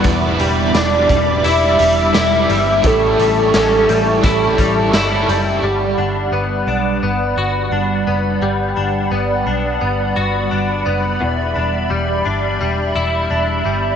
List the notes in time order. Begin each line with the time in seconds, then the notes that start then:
Already playing: G3 B3 D4 F#4
0.03 E1 E2 B2 E5 B5 D6, kick, closed hi-hat
0.07 E3 G3 D4
0.12 E4
0.39 E1 G3, closed hi-hat
0.74 E1 D4 D5, snare, closed hi-hat, tambourine
1.09 E1 G3, kick, closed hi-hat
1.43 E1 E3 G3 D4 E4 E5, closed hi-hat
1.49 E4
1.79 E1 G3, closed hi-hat
2.13 E1 E3 G3 E4, snare, closed hi-hat, tambourine
2.17 D4 E4
2.49 G1 G3 E5, closed hi-hat
2.81 A1 A2 E3 A5 C#6, kick, closed hi-hat
2.86 G3 C#4 A4
2.90 E4
3.19 A1 G3, closed hi-hat
3.54 A1 C#4, snare, closed hi-hat, tambourine
3.89 A1 G3, closed hi-hat
4.22 A1 E3 G3 C#4 E4, kick, closed hi-hat
4.28 E4
4.58 A1 G3, kick, closed hi-hat
4.92 G1 E3 G3 C#4 E4, snare, closed hi-hat, tambourine
4.98 E4
5.28 F#1 G3, closed hi-hat
5.62 G1 G3 D5 F#5 B5
5.98 G1 D4
6.31 G1 B3
6.67 B1 D4
7.02 G1 B3
7.37 G1 F#4
7.71 G1 D4
8.07 F#1 B3
8.41 G1 G3
8.77 G1 D4
9.11 G1 B3
9.46 B1 D4
9.81 G1 B3
10.16 G1 F#4
10.51 G1 D4
10.86 F#1 B3
11.21 E1 E2 E5
11.56 E1 D4
11.90 E1 G3
12.25 G1 D4
12.61 E1 G3
12.95 E1 E4
13.30 E1 D4
13.65 G1 G3